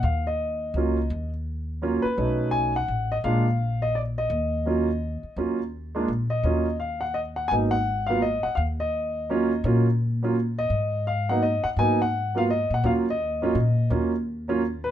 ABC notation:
X:1
M:3/4
L:1/8
Q:"Swing" 1/4=169
K:Ebm
V:1 name="Grand piano"
f e4- e- | e z4 c- | c2 a ^f2 ^d | f3 e =d e- |
e6- | e z4 e- | e2 f g e g | a g2 f e g |
f e4- e- | e z4 e- | e2 f g e g | a g2 f e g |
f e4- e- | e z4 c |]
V:2 name="Grand piano"
z4 [G,B,DF] z | z4 [G,B,DF] z | [^F,=A,D^D]3 z3 | [A,B,=DF] z4 z |
z2 [G,B,DF] z3 | [G,B,DF] z2 [A,B,=DF] z2 | [G,B,DF] z4 z | [G,B,CE] z2 [G,B,CF] z2 |
z4 [G,B,DF] z | [G,B,DF] z2 [G,B,DF] z2 | z3 [G,B,CE] z2 | [G,B,CE] z2 [G,B,CF] z2 |
[G,B,DF] z2 [G,B,DF] z2 | [G,B,DF] z2 [G,B,DF] z2 |]
V:3 name="Upright bass" clef=bass
E,,4 D,,2 | E,,4- E,, z | =B,,,4 =A,,,2 | B,,,6 |
E,,4- E,, z | E,,4 B,,,2 | E,,6 | A,,,4- A,,, z |
E,,6 | B,,6 | A,,4- A,, z | A,,4- A,, B,, |
E,,4 B,,2 | E,,6 |]